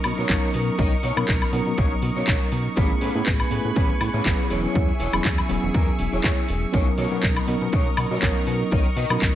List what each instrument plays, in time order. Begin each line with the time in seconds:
Already playing: tine electric piano F#3 B3 C#4 D#4 A#4, analog synth pad A#4 D#5 C#6
0.03 analog synth bass B2, muted clean electric guitar stroke, open hi-hat, high woodblock
0.17 analog synth bass B2, clean electric guitar D#4 A#4 C#5, closed hi-hat
0.29 analog synth bass B1, tine electric piano F#3 B3 C#4 D#4 A#4, kick, clap, closed hi-hat
0.43 closed hi-hat
0.54 analog synth bass B2, open hi-hat
0.68 closed hi-hat
0.77 analog synth bass B1, tine electric piano F#3 B3 C#4 D#4 C#5, clean electric guitar D#4 A#4 D#5, kick, closed hi-hat
0.92 closed hi-hat
1.03 analog synth bass B2, clean electric guitar D#4 A#4 C#5, open hi-hat
1.16 analog synth bass B2, tine electric piano F#3 B3 C#4 D#4 A#4, closed hi-hat, high woodblock
1.28 analog synth bass B1, kick, clap, closed hi-hat
1.42 closed hi-hat, high woodblock
1.52 analog synth bass B2, tine electric piano F#3 B3 C#4 D#4 A#4, muted clean electric guitar stroke, open hi-hat
1.67 analog synth bass B2, closed hi-hat
1.77 analog synth bass B1, clean electric guitar D#4 A#4 C#5, kick, closed hi-hat
1.91 closed hi-hat
2.01 analog synth bass B2, muted clean electric guitar stroke, open hi-hat
2.15 analog synth bass B2, clean electric guitar D#4 A#4 C#5, closed hi-hat
2.27 analog synth bass B1, kick, clap, closed hi-hat
2.41 closed hi-hat
2.52 analog synth bass B2, open hi-hat
2.65 closed hi-hat
2.76 analog synth bass A1, tine electric piano A3 B3 C#4 E4 G#4, clean electric guitar C#4 G#4 B4, analog synth pad B4 G#5, kick, closed hi-hat
2.90 closed hi-hat
3.00 analog synth bass A2, clean electric guitar C#4 G#4 B4, open hi-hat
3.15 analog synth bass A2, tine electric piano A3 B3 C#4 E4 G#4, closed hi-hat
3.26 analog synth bass A1, kick, clap, closed hi-hat
3.40 closed hi-hat, high woodblock
3.50 analog synth bass A2, tine electric piano A3 B3 C#4 E4 G#4, muted clean electric guitar stroke, open hi-hat
3.65 analog synth bass A2, closed hi-hat
3.75 analog synth bass A1, clean electric guitar C#4 G#4 B4, kick, closed hi-hat
3.90 closed hi-hat
4.00 analog synth bass A2, muted clean electric guitar stroke, open hi-hat, high woodblock
4.13 analog synth bass A2, clean electric guitar C#4 G#4 B4, closed hi-hat
4.24 analog synth bass A1, tine electric piano F#3 B3 C#4 E4 G#4, kick, clap, closed hi-hat
4.39 closed hi-hat
4.50 analog synth bass E1, clean electric guitar E4 G#4 C#5, analog synth pad G#4 E5, open hi-hat
4.64 closed hi-hat
4.74 analog synth bass E2, tine electric piano F#3 B3 C#4 E4 C#5, kick, closed hi-hat
4.89 closed hi-hat
4.99 analog synth bass E1, clean electric guitar E4 G#4 C#5, open hi-hat
5.13 analog synth bass E1, tine electric piano F#3 B3 C#4 E4 G#4, closed hi-hat, high woodblock
5.24 analog synth bass E2, kick, clap, closed hi-hat
5.38 closed hi-hat, high woodblock
5.48 analog synth bass E1, tine electric piano F#3 B3 C#4 E4 G#4, muted clean electric guitar stroke, open hi-hat
5.63 analog synth bass E1, closed hi-hat
5.74 analog synth bass E2, clean electric guitar E4 G#4 A#4, kick, closed hi-hat
5.88 closed hi-hat
5.99 analog synth bass E1, muted clean electric guitar stroke, open hi-hat
6.12 analog synth bass E1, clean electric guitar E4 G#4 C#5, closed hi-hat
6.24 analog synth bass E2, kick, clap, closed hi-hat
6.37 closed hi-hat
6.48 analog synth bass E1, open hi-hat
6.62 closed hi-hat
6.72 analog synth bass B1, tine electric piano F#3 B3 C#4 D#4 A#4, clean electric guitar D#4 A#4 C#5, analog synth pad A#4 D#5 C#6, kick, closed hi-hat
6.87 closed hi-hat
6.97 analog synth bass B2, clean electric guitar D#4 A#4 C#5, open hi-hat
7.11 analog synth bass B2, tine electric piano F#3 B3 C#4 D#4 A#4, closed hi-hat
7.23 analog synth bass B1, kick, clap, closed hi-hat
7.36 closed hi-hat, high woodblock
7.46 analog synth bass B2, tine electric piano F#3 B3 C#4 D#4 A#4, muted clean electric guitar stroke, open hi-hat
7.61 analog synth bass B2, closed hi-hat
7.72 analog synth bass B1, clean electric guitar D#4 A#4 C#5, kick, closed hi-hat
7.86 closed hi-hat
7.97 analog synth bass B2, muted clean electric guitar stroke, open hi-hat, high woodblock
8.11 analog synth bass B2, clean electric guitar D#4 A#4 C#5, closed hi-hat
8.21 analog synth bass B1, tine electric piano F#3 B3 C#4 D#4 A#4, kick, clap, closed hi-hat
8.36 closed hi-hat
8.47 analog synth bass B2, open hi-hat
8.60 closed hi-hat
8.71 analog synth bass B1, tine electric piano F#3 B3 C#4 D#4 C#5, clean electric guitar D#4 A#4 D#5, kick, closed hi-hat
8.85 closed hi-hat
8.96 analog synth bass B2, clean electric guitar D#4 A#4 D#5, open hi-hat
9.10 analog synth bass B2, tine electric piano F#3 B3 C#4 D#4 A#4, closed hi-hat, high woodblock
9.21 analog synth bass B1, kick, clap, closed hi-hat